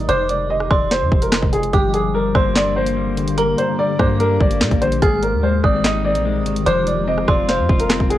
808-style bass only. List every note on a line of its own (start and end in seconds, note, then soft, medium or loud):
0.09 0.68 F1 loud
0.71 1.03 F1 loud
1.01 1.11 F2 loud
1.12 1.41 F1 loud
1.42 1.72 F1 loud
1.73 2.32 G1 loud
2.35 3.54 G1 loud
3.99 4.39 G2 loud
4.41 4.62 G1 loud
4.61 4.71 A#2 loud
4.71 5.01 A#1 loud
5.02 5.34 G#1 loud
5.33 5.62 D#2 loud
5.64 6.17 G#1 loud
6.15 6.42 A#1 loud
6.41 6.65 G#1 loud
6.66 7.26 F1 loud
7.28 7.60 F1 loud
7.59 7.69 F2 loud
7.69 7.99 F1 loud
8.00 8.18 F1 loud